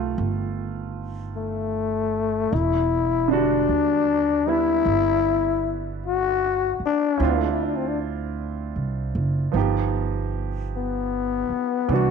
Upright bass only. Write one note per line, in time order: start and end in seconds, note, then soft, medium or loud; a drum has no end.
0.00 0.14 B1 medium
0.18 2.48 G1 medium
2.53 3.65 E1 medium
3.69 4.82 D#2 medium
4.85 6.76 G1 medium
6.80 muted upright bass stroke soft
7.20 8.72 D2 medium
8.76 9.12 C2 medium
9.15 9.51 F#1 medium
9.54 11.45 G1 medium
11.50 muted upright bass stroke soft
11.89 12.11 C2 medium